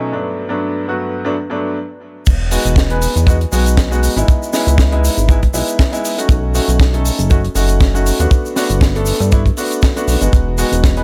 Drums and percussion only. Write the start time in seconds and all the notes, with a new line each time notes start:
2.26 kick, closed hi-hat, crash, shaker
2.51 open hi-hat, shaker
2.65 closed hi-hat, shaker
2.76 kick, snare, closed hi-hat, shaker
2.90 closed hi-hat
3.02 open hi-hat, shaker
3.17 closed hi-hat, shaker
3.27 kick, closed hi-hat, shaker
3.41 closed hi-hat
3.52 open hi-hat, shaker
3.66 closed hi-hat, shaker
3.77 kick, snare, closed hi-hat, shaker
3.92 shaker
4.03 open hi-hat, shaker
4.17 closed hi-hat, shaker
4.28 kick, closed hi-hat, shaker
4.43 shaker
4.53 snare, open hi-hat, shaker
4.68 closed hi-hat, shaker
4.78 kick, snare, closed hi-hat, shaker
4.92 closed hi-hat
5.05 open hi-hat, shaker
5.18 closed hi-hat, shaker
5.29 kick, closed hi-hat, shaker
5.43 kick, closed hi-hat
5.54 open hi-hat, shaker
5.68 closed hi-hat, shaker
5.79 kick, snare, closed hi-hat, shaker
5.93 closed hi-hat, shaker
6.05 open hi-hat, shaker
6.18 closed hi-hat, shaker
6.29 kick, closed hi-hat, shaker
6.55 open hi-hat, shaker
6.69 closed hi-hat, shaker
6.80 kick, snare, closed hi-hat, shaker
6.94 closed hi-hat
7.05 open hi-hat, shaker
7.19 closed hi-hat, shaker
7.30 kick, closed hi-hat, shaker
7.45 closed hi-hat
7.55 open hi-hat, shaker
7.69 closed hi-hat, shaker
7.81 kick, snare, closed hi-hat, shaker
7.95 shaker
8.06 open hi-hat, shaker
8.20 closed hi-hat, shaker
8.31 kick, closed hi-hat, shaker
8.46 shaker
8.56 snare, open hi-hat, shaker
8.70 closed hi-hat, shaker
8.81 kick, snare, closed hi-hat, shaker
8.96 closed hi-hat
9.06 open hi-hat, shaker
9.20 closed hi-hat, shaker
9.32 kick, closed hi-hat, shaker
9.46 kick, closed hi-hat
9.57 open hi-hat, shaker
9.71 closed hi-hat, shaker
9.82 kick, snare, closed hi-hat, shaker
9.97 closed hi-hat, shaker
10.08 open hi-hat, shaker
10.21 closed hi-hat, shaker
10.33 kick, closed hi-hat, shaker
10.58 open hi-hat, shaker
10.72 closed hi-hat, shaker
10.84 kick, snare, closed hi-hat, shaker
10.97 closed hi-hat